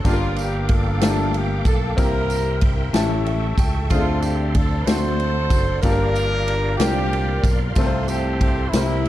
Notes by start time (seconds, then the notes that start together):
0.04 G1 G2 A#3 D4 F4 G4 A4 F5 G5 D6, kick, ride, tambourine
0.13 A#4
0.36 G4, ride, tambourine
0.69 D4 F4 A4, kick, ride
1.01 A3 D4 F4 G4 A4, snare, ride, tambourine
1.07 A#3
1.34 G4, ride
1.65 B1 A4, kick, ride, tambourine
1.96 C2 C3 A#3 C4 E4 G4 A#4 E5 C6, kick, ride, tambourine
2.02 A#4
2.30 ride, tambourine
2.61 kick, ride
2.93 A1 A2 A3 C#4 E4 G4 A4 C#6, snare, ride, tambourine
3.26 E5, ride
3.57 C#2 G5, kick, ride, tambourine
3.90 D2 D3 A3 C4 D4 F4 G#4 D5 F5 C6, kick, ride, tambourine
4.00 A4
4.21 G4, ride, tambourine
4.55 A4, kick, ride
4.85 D2 D3 A3 C4 D4 F#4 A4 C5 F#5, snare, ride, tambourine
4.89 F#4 A4
5.20 ride
5.50 F#1, kick, ride, tambourine
5.82 G1 G2 A#3 D4 F4 G4 A4 A#4 F5 A#5, kick, ride, tambourine
5.92 A#4
6.15 ride, tambourine
6.48 ride
6.78 C2 A#2 A#3 C4 D4 E4 G4 A#4 C6, snare, ride, tambourine
6.87 F4
7.13 ride
7.44 B1, kick, ride, tambourine
7.72 C2 A3 C4 F4, kick, ride, tambourine
7.77 C3 A3 C4 F4 A4 A#4 C5
7.86 C5
8.05 C4 G4, ride, tambourine
8.41 kick, ride
8.69 C2 G3 A#3 E4 A#4 E5 G5, ride, tambourine
8.74 C3 C4 E4 G4 A#4 C5, snare
9.05 ride